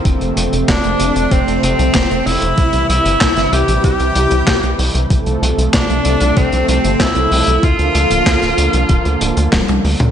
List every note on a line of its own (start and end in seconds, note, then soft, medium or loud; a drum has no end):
0.00 2.54 F3 medium
0.00 2.54 C4 medium
0.05 0.17 F1 loud
0.05 5.07 C3 medium
0.05 2.56 A3 medium
0.05 kick loud
0.05 closed hi-hat medium
0.21 0.32 F1 medium
0.21 closed hi-hat soft
0.37 0.48 F1 medium
0.37 closed hi-hat loud
0.53 0.64 F1 medium
0.53 closed hi-hat medium
0.68 0.80 F1 loud
0.68 1.28 D4 medium
0.68 1.33 D4 medium
0.68 kick loud
0.68 snare loud
0.68 clap loud
0.68 closed hi-hat medium
0.84 0.96 F1 medium
0.84 closed hi-hat soft
1.00 1.11 F1 medium
1.00 closed hi-hat loud
1.16 1.27 F1 medium
1.16 closed hi-hat medium
1.31 1.43 F1 loud
1.31 1.61 C4 loud
1.31 1.63 C4 medium
1.31 kick loud
1.31 closed hi-hat medium
1.47 1.59 F1 medium
1.47 closed hi-hat soft
1.63 1.75 F1 medium
1.63 2.22 C4 loud
1.63 2.28 C4 medium
1.63 closed hi-hat loud
1.79 1.90 C2 medium
1.79 closed hi-hat medium
1.94 2.06 F1 loud
1.94 kick loud
1.94 snare loud
1.94 clap medium
1.94 closed hi-hat medium
2.11 2.22 F1 medium
2.11 closed hi-hat soft
2.26 2.38 F1 loud
2.26 2.85 E4 loud
2.26 2.89 E4 loud
2.26 open hi-hat medium
2.42 2.54 F1 medium
2.42 closed hi-hat medium
2.58 2.69 C2 loud
2.58 5.08 E3 medium
2.58 5.08 G3 medium
2.58 5.08 E4 medium
2.58 kick loud
2.58 closed hi-hat medium
2.73 2.85 C2 medium
2.73 closed hi-hat soft
2.89 3.01 C2 medium
2.89 3.49 E4 loud
2.89 3.54 E4 loud
2.89 closed hi-hat medium
3.05 3.17 G1 medium
3.05 closed hi-hat medium
3.21 3.32 C2 loud
3.21 kick loud
3.21 snare loud
3.21 clap loud
3.21 closed hi-hat medium
3.36 3.48 G1 medium
3.36 snare soft
3.36 closed hi-hat soft
3.52 3.64 C2 loud
3.52 3.82 G4 loud
3.52 3.84 G4 loud
3.52 closed hi-hat medium
3.68 3.80 A#1 medium
3.68 closed hi-hat medium
3.84 3.96 C2 loud
3.84 4.75 G4 loud
3.84 kick loud
3.84 closed hi-hat medium
4.00 4.11 C2 medium
4.00 closed hi-hat soft
4.15 4.27 C2 medium
4.15 closed hi-hat medium
4.31 4.43 C2 medium
4.31 closed hi-hat medium
4.47 4.59 C2 loud
4.47 kick loud
4.47 snare loud
4.47 clap loud
4.47 closed hi-hat medium
4.63 4.75 C2 medium
4.63 closed hi-hat soft
4.79 4.90 C2 loud
4.79 open hi-hat loud
4.95 5.06 C2 medium
4.95 closed hi-hat medium
5.10 5.22 C2 loud
5.10 7.61 C3 medium
5.10 10.11 F3 medium
5.10 7.61 A3 medium
5.10 10.11 A4 medium
5.10 kick loud
5.10 closed hi-hat medium
5.26 5.38 C2 medium
5.26 closed hi-hat soft
5.42 5.54 C2 loud
5.42 closed hi-hat medium
5.58 5.69 C2 medium
5.58 closed hi-hat medium
5.74 5.85 C2 loud
5.74 6.33 D4 loud
5.74 6.39 D4 loud
5.74 kick loud
5.74 snare loud
5.74 clap loud
5.74 closed hi-hat medium
5.90 6.01 C2 medium
5.90 closed hi-hat soft
6.05 6.17 C2 loud
6.05 closed hi-hat medium
6.20 6.32 C2 medium
6.20 closed hi-hat medium
6.37 6.48 C2 loud
6.37 6.66 C4 loud
6.37 6.68 C4 loud
6.37 kick loud
6.37 closed hi-hat medium
6.52 6.64 C2 medium
6.52 closed hi-hat soft
6.68 6.80 C2 loud
6.68 6.98 C4 medium
6.68 7.02 C4 medium
6.68 closed hi-hat loud
6.84 6.96 G1 medium
6.84 closed hi-hat medium
7.00 7.11 C2 loud
7.00 7.59 E4 loud
7.00 7.65 E4 loud
7.00 kick loud
7.00 snare loud
7.00 clap loud
7.00 closed hi-hat medium
7.15 7.27 C2 medium
7.15 closed hi-hat soft
7.32 7.43 C2 loud
7.32 open hi-hat loud
7.47 7.59 C2 medium
7.47 closed hi-hat medium
7.63 7.75 D2 loud
7.63 10.11 D3 medium
7.63 10.11 A#3 medium
7.63 9.49 F4 loud
7.63 9.53 F4 loud
7.63 kick loud
7.63 closed hi-hat medium
7.79 7.90 D2 medium
7.79 closed hi-hat soft
7.95 8.06 D2 medium
7.95 closed hi-hat loud
8.11 8.22 D1 medium
8.11 closed hi-hat medium
8.26 8.38 D2 loud
8.26 kick loud
8.26 snare loud
8.26 clap loud
8.26 closed hi-hat medium
8.42 8.54 D1 medium
8.42 snare soft
8.42 closed hi-hat soft
8.58 8.69 D2 medium
8.58 closed hi-hat loud
8.73 8.85 C2 medium
8.73 closed hi-hat medium
8.89 9.01 D1 loud
8.89 kick loud
8.89 closed hi-hat medium
9.05 9.17 D2 medium
9.05 closed hi-hat soft
9.21 9.33 D1 loud
9.21 closed hi-hat loud
9.37 9.48 D2 medium
9.37 closed hi-hat medium
9.52 9.64 D1 loud
9.52 kick loud
9.52 snare loud
9.52 clap medium
9.52 closed hi-hat medium
9.52 high tom medium
9.68 9.80 C2 medium
9.68 closed hi-hat soft
9.68 high tom medium
9.84 9.96 D2 loud
9.84 open hi-hat medium
10.00 10.11 D2 medium
10.00 closed hi-hat medium
10.00 mid tom medium